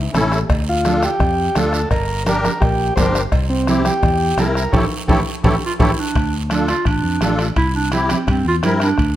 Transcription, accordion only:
0.13 0.39 C#4 medium
0.13 0.39 E4 medium
0.13 0.39 A4 loud
0.85 1.10 D4 medium
0.85 1.10 F4 medium
0.85 1.10 A4 medium
1.55 1.80 D4 medium
1.55 1.80 F4 medium
1.55 1.81 A4 medium
2.26 2.51 D4 medium
2.26 2.51 G4 medium
2.26 2.51 A#4 medium
2.97 3.22 D4 medium
2.97 3.22 G4 medium
2.97 3.22 A#4 medium
3.67 3.92 C4 medium
3.67 3.93 E4 medium
3.67 3.93 G4 medium
4.38 4.63 C4 medium
4.38 4.63 E4 medium
4.38 4.63 A#4 medium
4.74 4.86 E4 medium
4.74 4.85 G4 loud
4.74 4.86 A4 medium
5.09 5.21 E4 medium
5.09 5.21 G4 loud
5.09 5.21 A4 loud
5.44 5.56 E4 medium
5.44 5.56 G4 medium
5.44 5.56 A4 medium
5.79 5.91 E4 medium
5.79 5.91 G4 medium
5.79 5.91 A4 medium
6.50 6.75 D4 medium
6.50 6.75 F4 medium
6.50 6.76 A4 medium
7.21 7.46 D4 medium
7.21 7.47 F4 medium
7.21 7.47 A4 medium
7.92 8.17 C4 medium
7.92 8.17 E4 medium
7.92 8.17 G4 medium
8.63 8.88 C4 medium
8.63 8.89 E4 medium
8.63 8.89 A#4 medium

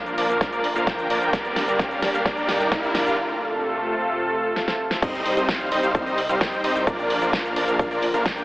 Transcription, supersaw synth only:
0.00 0.15 F3 medium
0.00 0.15 A#3 medium
0.00 0.15 D4 medium
0.00 0.15 A#4 medium
0.00 0.15 F5 medium
0.18 0.27 F3 medium
0.18 0.27 A#3 medium
0.18 0.27 D4 medium
0.18 0.27 A#4 medium
0.18 0.27 D5 loud
0.29 0.38 F3 medium
0.29 0.38 A#3 medium
0.29 0.38 D4 medium
0.29 0.38 A#4 medium
0.29 0.38 F5 medium
0.41 0.51 D4 medium
0.52 0.66 F3 medium
0.52 0.66 A#3 medium
0.52 0.66 D4 medium
0.52 0.66 A#4 medium
0.52 0.66 D5 loud
0.76 0.85 F3 medium
0.76 0.85 A#3 medium
0.76 0.85 D4 medium
0.76 0.85 A#4 medium
0.76 0.85 F5 medium
0.87 1.07 F3 medium
0.87 1.07 A#3 medium
0.87 1.07 G5 medium
1.10 1.19 F3 loud
1.10 1.19 A#3 medium
1.10 1.19 D4 medium
1.10 1.19 A#4 medium
1.10 1.19 D5 loud
1.22 1.30 F3 medium
1.22 1.30 A#3 medium
1.22 1.30 D4 medium
1.22 1.30 A#4 medium
1.22 1.30 G5 medium
1.33 1.65 G3 medium
1.68 1.78 G3 medium
1.68 1.78 A#3 medium
1.68 1.78 D4 medium
1.68 1.78 A#4 medium
1.68 1.78 D5 medium
1.79 2.00 D4 medium
1.79 2.00 A#4 medium
2.02 2.11 G3 medium
2.02 2.11 A#3 medium
2.02 2.11 D4 medium
2.02 2.11 A#4 medium
2.02 2.11 D5 medium
2.14 2.23 G3 medium
2.14 2.23 A#3 medium
2.14 2.23 D4 medium
2.14 2.23 A#4 medium
2.14 2.23 F5 medium
2.25 2.57 G3 medium
2.25 2.57 A#3 medium
2.25 2.57 D4 medium
2.25 2.57 A#4 medium
2.25 2.57 D5 medium
2.60 2.70 G3 medium
2.60 2.70 A#3 medium
2.60 2.70 D4 medium
2.60 2.70 A#4 medium
2.60 2.70 D5 medium
2.72 2.92 G3 medium
2.72 2.92 A#3 medium
2.72 2.92 D4 medium
2.72 2.92 A#4 medium
2.72 2.92 F5 medium
2.95 3.04 G3 medium
2.95 3.04 A#3 medium
2.95 3.04 D4 medium
2.95 3.04 A#4 medium
2.95 3.04 D5 loud
3.06 3.15 G3 medium
3.06 3.15 A#3 medium
3.06 3.15 D4 medium
3.06 3.15 A#4 medium
3.06 3.15 F5 medium
5.02 5.34 G3 medium
5.02 5.34 C4 medium
5.02 5.34 D#4 medium
5.02 5.34 C5 medium
5.02 5.34 D#5 loud
5.37 5.47 G3 loud
5.37 5.47 C4 medium
5.37 5.47 D#4 medium
5.37 5.47 C5 medium
5.37 5.47 D#5 loud
5.72 5.80 G3 medium
5.72 5.80 C4 medium
5.72 5.80 D#4 medium
5.72 5.80 C5 medium
5.72 5.80 D#5 loud
5.83 5.92 G3 medium
5.83 5.92 C4 medium
5.83 5.92 D#4 medium
5.83 5.92 C5 medium
5.83 5.92 F5 medium
5.95 6.05 G3 medium
5.95 6.05 C4 medium
5.95 6.05 D#4 medium
5.95 6.05 C5 medium
5.95 6.05 F5 medium
6.06 6.20 G3 loud
6.06 6.20 C4 medium
6.06 6.20 D#4 medium
6.06 6.20 C5 medium
6.06 6.20 D#5 loud
6.29 6.39 G3 medium
6.29 6.39 C4 medium
6.29 6.39 D#4 medium
6.29 6.39 C5 medium
6.29 6.39 F5 medium
6.41 6.61 G3 medium
6.41 6.61 C4 medium
6.41 6.61 D#4 medium
6.41 6.61 C5 medium
6.41 6.61 G5 loud
6.64 6.73 G3 loud
6.64 6.73 C4 medium
6.64 6.73 D#4 medium
6.64 6.73 C5 medium
6.64 6.73 D#5 loud
6.75 6.84 G3 medium
6.75 6.84 C4 medium
6.75 6.84 D#4 medium
6.75 6.84 C5 medium
6.75 6.84 G5 medium
6.87 7.19 F3 medium
6.87 7.19 A#3 medium
6.87 7.19 D4 medium
6.87 7.19 A#4 medium
6.87 7.19 D5 loud
7.22 7.31 F3 loud
7.22 7.31 A#3 medium
7.22 7.31 D4 medium
7.22 7.31 A#4 medium
7.22 7.31 D5 loud
7.33 7.54 F3 medium
7.33 7.54 A#3 medium
7.33 7.54 D4 medium
7.33 7.54 A#4 medium
7.33 7.54 F5 medium
7.56 7.65 F3 medium
7.56 7.65 A#3 medium
7.56 7.65 D4 medium
7.56 7.65 A#4 medium
7.56 7.65 D5 loud
7.68 7.77 F3 medium
7.68 7.77 A#3 medium
7.68 7.77 D4 medium
7.68 7.77 A#4 medium
7.68 7.77 F5 medium
7.79 7.89 F3 medium
7.79 7.89 A#3 medium
7.79 7.89 D4 medium
7.79 7.89 A#4 medium
7.91 8.05 F3 medium
7.91 8.05 A#3 medium
7.91 8.05 D4 medium
7.91 8.05 A#4 medium
7.91 8.05 D5 loud
8.14 8.24 F3 medium
8.14 8.24 A#3 medium
8.14 8.24 D4 medium
8.14 8.24 A#4 medium
8.14 8.24 F5 medium

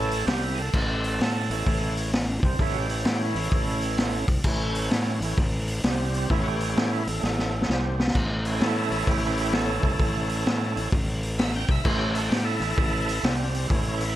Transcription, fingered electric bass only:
0.00 0.24 A1 medium
0.27 0.71 C2 medium
0.73 1.17 A1 medium
1.20 1.48 A2 medium
1.50 1.65 A1 medium
1.66 2.39 A1 loud
2.43 2.58 C2 loud
2.59 3.03 A1 loud
3.05 3.34 A2 medium
3.35 3.51 A1 medium
3.52 4.25 A1 medium
4.28 4.43 C2 loud
4.44 4.88 A1 loud
4.91 5.19 A2 loud
5.21 5.36 A1 medium
5.37 5.81 A1 loud
5.84 6.27 C2 medium
6.30 6.73 A1 loud
6.77 7.05 A2 medium
7.07 7.22 A1 medium
7.23 7.66 A1 loud
7.69 8.12 C2 medium
8.15 8.58 A1 loud
8.61 8.89 A2 medium
8.91 9.06 A1 medium
9.07 9.80 A1 medium
9.83 9.98 C2 medium
9.99 10.43 A1 loud
10.46 10.74 A2 medium
10.77 10.92 A1 medium
10.92 11.65 A1 medium
11.69 11.84 C2 loud
11.85 12.28 A1 loud
12.31 12.59 A2 medium
12.60 12.76 A1 medium
12.77 13.21 A1 loud
13.23 13.67 C2 loud
13.70 14.13 A1 loud

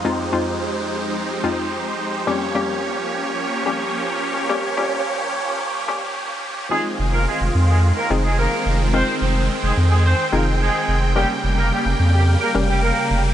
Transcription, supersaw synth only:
0.00 2.23 F2 medium
0.00 2.23 G#3 medium
0.00 2.23 D#4 medium
0.00 2.23 C5 medium
0.05 6.67 G4 medium
2.27 6.68 F3 medium
2.27 6.68 A#3 medium
2.27 6.68 C#4 medium
2.27 6.68 C#5 loud
6.72 11.12 D#3 medium
6.72 11.12 G#3 medium
6.72 11.12 C4 medium
6.72 8.92 F4 loud
8.94 13.34 G5 loud
11.16 13.34 C#3 medium
11.16 13.34 G3 medium
11.16 13.34 A#3 medium

